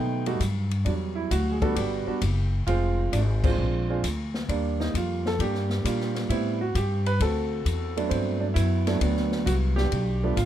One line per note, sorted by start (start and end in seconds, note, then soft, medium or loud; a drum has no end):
0.00 0.39 B2 medium
0.00 0.68 D#3 medium
0.00 0.68 F#3 medium
0.00 0.23 A3 medium
0.00 0.36 B3 medium
0.00 0.23 D#4 medium
0.00 0.23 G5 medium
0.26 0.39 G3 medium
0.26 0.40 A3 medium
0.26 0.39 D#4 medium
0.26 0.39 F#4 medium
0.26 ride soft
0.40 0.84 G2 loud
0.40 kick soft
0.40 hi-hat pedal medium
0.40 ride medium
0.71 ride soft
0.85 1.30 E2 medium
0.85 1.73 F#3 medium
0.85 1.61 G3 medium
0.85 0.92 D4 medium
0.85 kick soft
0.85 ride medium
1.16 1.31 E4 medium
1.31 1.75 D2 loud
1.31 1.55 F#4 medium
1.31 kick soft
1.31 hi-hat pedal medium
1.31 ride medium
1.52 1.61 G#4 medium
1.62 2.04 G3 medium
1.62 1.76 B3 medium
1.62 1.75 D4 medium
1.62 2.05 F#4 medium
1.62 1.77 A4 loud
1.62 kick medium
1.62 ride soft
1.76 2.05 G1 medium
1.76 2.06 B3 medium
1.76 2.06 D4 medium
1.76 2.48 G4 medium
1.76 kick soft
1.76 ride medium
2.07 2.20 G3 medium
2.07 2.20 B3 medium
2.07 2.20 D4 medium
2.07 2.20 F#4 medium
2.07 muted upright bass stroke soft
2.21 2.66 F#1 loud
2.21 kick soft
2.21 hi-hat pedal medium
2.21 ride medium
2.67 3.11 F1 medium
2.67 3.42 G#3 medium
2.67 3.42 C4 medium
2.67 3.14 F4 loud
2.67 kick soft
2.67 ride medium
3.12 3.57 G#1 loud
3.12 3.20 D4 medium
3.12 kick soft
3.12 hi-hat pedal medium
3.12 ride medium
3.44 4.31 F3 medium
3.44 3.86 G#3 medium
3.44 3.88 C4 loud
3.44 3.86 D4 medium
3.44 3.86 F4 medium
3.44 kick medium
3.44 crash medium
3.58 4.02 A#1 loud
3.90 4.02 G#3 medium
3.90 4.02 C4 medium
3.90 4.02 D4 medium
3.90 4.03 F4 medium
4.03 4.47 D2 medium
4.03 kick soft
4.03 hi-hat pedal medium
4.03 ride medium
4.34 snare medium
4.49 4.93 D#2 medium
4.49 5.36 G3 medium
4.49 5.36 A#3 medium
4.49 4.81 D4 medium
4.49 kick soft
4.49 ride medium
4.80 4.93 D#4 medium
4.80 snare medium
4.94 5.38 F2 medium
4.94 5.27 F4 medium
4.94 kick soft
4.94 hi-hat pedal medium
4.94 ride medium
5.26 5.41 A4 loud
5.26 snare medium
5.39 5.83 G2 medium
5.39 5.84 A#3 medium
5.39 5.84 D4 medium
5.39 6.12 G4 medium
5.39 kick soft
5.39 ride medium
5.55 snare soft
5.70 snare medium
5.84 6.28 A#2 medium
5.84 6.29 G3 medium
5.84 6.30 A#3 medium
5.84 6.30 D4 medium
5.84 6.30 F4 medium
5.84 kick soft
5.84 hi-hat pedal medium
5.84 ride medium
6.00 snare soft
6.15 snare soft
6.15 ride soft
6.29 6.73 A2 medium
6.29 6.58 G3 medium
6.29 6.58 B3 medium
6.29 7.17 C4 medium
6.29 6.58 E4 loud
6.29 kick soft
6.29 ride medium
6.61 6.74 F#4 medium
6.75 7.19 G2 loud
6.75 7.07 G4 medium
6.75 kick soft
6.75 hi-hat pedal medium
6.75 ride medium
7.06 7.21 B4 loud
7.06 ride medium
7.20 7.64 D2 medium
7.20 8.08 C4 medium
7.20 8.08 F#4 medium
7.20 7.93 A4 loud
7.20 kick soft
7.20 ride medium
7.65 8.09 E2 medium
7.65 kick soft
7.65 hi-hat pedal medium
7.65 ride medium
7.97 8.11 F#3 medium
7.97 8.53 A3 medium
7.97 8.54 B3 medium
7.97 8.39 D4 medium
7.97 ride medium
8.10 8.55 G2 medium
8.10 8.86 F#3 medium
8.10 8.42 C4 medium
8.10 kick soft
8.10 ride medium
8.40 8.45 D4 medium
8.54 9.00 F#2 loud
8.54 8.86 B3 medium
8.54 8.97 E4 loud
8.54 kick soft
8.54 hi-hat pedal medium
8.54 ride medium
8.87 9.00 F#3 medium
8.87 9.00 A3 medium
8.87 9.00 B3 medium
8.87 9.00 D4 medium
8.87 snare soft
8.87 ride medium
9.01 9.45 D2 medium
9.01 9.89 F#3 medium
9.01 9.89 B3 medium
9.01 9.44 D4 medium
9.01 kick soft
9.01 ride medium
9.17 snare soft
9.32 snare medium
9.46 9.90 C2 medium
9.46 9.53 F#4 loud
9.46 kick soft
9.46 hi-hat pedal medium
9.46 ride medium
9.76 10.23 D4 medium
9.76 10.32 G4 loud
9.76 snare medium
9.91 10.35 B1 loud
9.91 kick soft
9.91 ride medium
10.23 10.36 F3 medium
10.23 10.36 A3 medium
10.23 10.36 B3 medium
10.23 10.36 D4 medium
10.37 10.45 A1 medium
10.37 10.45 F4 loud
10.37 kick soft
10.37 hi-hat pedal medium
10.37 ride medium